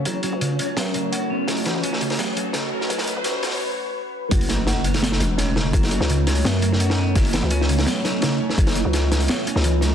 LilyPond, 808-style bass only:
\new Staff \with { instrumentName = "808-style bass" } { \clef bass \time 4/4 \key fis \minor \tempo 4 = 169 fis,,8. cis,4~ cis,16 fis,2 | fis,,8. cis,4~ cis,16 r2 | fis,,8. cis,4~ cis,16 r2 | fis,,2~ fis,,8 e,,4. |
fis,,8. cis,4~ cis,16 fis,2 | fis,,8. cis,4~ cis,16 r2 | fis,,8. cis,4~ cis,16 r8. cis,4~ cis,16 | }